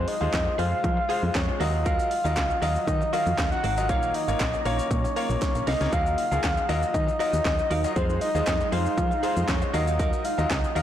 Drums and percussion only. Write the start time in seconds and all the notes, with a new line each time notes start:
0.08 open hi-hat
0.33 kick, snare, clap, closed hi-hat
0.59 open hi-hat
0.84 kick, closed hi-hat
1.10 open hi-hat
1.35 kick, snare, clap, closed hi-hat
1.61 open hi-hat
1.86 kick, closed hi-hat, shaker
1.99 shaker
2.11 open hi-hat, shaker
2.25 shaker
2.37 kick, snare, clap, closed hi-hat, shaker
2.50 shaker
2.62 open hi-hat, shaker
2.76 shaker
2.87 kick, closed hi-hat, shaker
3.02 shaker
3.13 open hi-hat, shaker
3.26 shaker
3.38 kick, snare, clap, closed hi-hat, shaker
3.52 shaker
3.64 open hi-hat, shaker
3.77 shaker
3.89 kick, closed hi-hat, shaker
4.03 shaker
4.14 open hi-hat, shaker
4.28 shaker
4.40 kick, snare, clap, closed hi-hat, shaker
4.54 shaker
4.65 open hi-hat, shaker
4.79 shaker
4.91 kick, closed hi-hat, shaker
5.05 shaker
5.16 open hi-hat, shaker
5.30 shaker
5.42 kick, snare, clap, closed hi-hat, shaker
5.55 shaker
5.67 snare, open hi-hat, shaker
5.81 snare, shaker
5.93 kick, closed hi-hat, shaker
6.06 shaker
6.18 open hi-hat, shaker
6.32 shaker
6.44 kick, snare, clap, closed hi-hat, shaker
6.57 shaker
6.69 open hi-hat, shaker
6.83 shaker
6.94 kick, closed hi-hat, shaker
7.08 shaker
7.20 open hi-hat, shaker
7.33 shaker
7.45 kick, snare, clap, closed hi-hat, shaker
7.59 shaker
7.71 open hi-hat, shaker
7.84 shaker
7.96 kick, closed hi-hat, shaker
8.10 shaker
8.21 open hi-hat, shaker
8.35 shaker
8.47 kick, snare, clap, closed hi-hat, shaker
8.61 shaker
8.72 open hi-hat, shaker
8.86 shaker
8.98 kick, closed hi-hat, shaker
9.12 shaker
9.23 open hi-hat, shaker
9.37 shaker
9.48 kick, snare, clap, closed hi-hat, shaker
9.62 shaker
9.74 open hi-hat, shaker
9.87 shaker
10.00 kick, closed hi-hat, shaker
10.13 shaker
10.25 open hi-hat, shaker
10.39 shaker
10.51 kick, snare, clap, closed hi-hat, shaker
10.64 shaker
10.76 open hi-hat, shaker